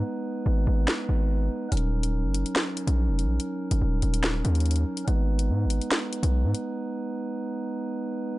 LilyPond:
<<
  \new Staff \with { instrumentName = "Pipe organ" } { \time 4/4 \key aes \dorian \tempo 4 = 143 ees'1~ | ees'1~ | ees'1~ | ees'1~ |
ees'1 | }
  \new Staff \with { instrumentName = "Pipe organ" } { \time 4/4 \key aes \dorian <aes ces' ces''>1 | <ges des' bes'>1~ | <ges des' bes'>1 | <aes ces' ces''>1~ |
<aes ces' ces''>1 | }
  \new Staff \with { instrumentName = "808-style bass" } { \clef bass \time 4/4 \key aes \dorian r4 aes,,8 aes,,8 r8 aes,,4 r8 | ees,,4~ ees,,16 ges,,8 r4 bes,,8 f,,16. bes,,16. | r8. ges,,16 ees,,8 ees,,4 ees,4 r8 | aes,,4 aes,16. aes,,16. r4 ces,8 aes,16 r8 |
r1 | }
  \new DrumStaff \with { instrumentName = "Drums" } \drummode { \time 4/4 r4 r4 sn4 r4 | hh32 hh8 r32 hh16 r8 hh16 hh16 sn8 hh16 hh16 r8 hh8 | hh8. hh16 r8 hh16 hh16 sn8 hh16 hh32 hh32 hh32 hh32 hh8 hh16 | hh8. hh16 r8 hh16 hh16 sn8 hh16 hh16 r8 hh8 |
r4 r4 r4 r4 | }
>>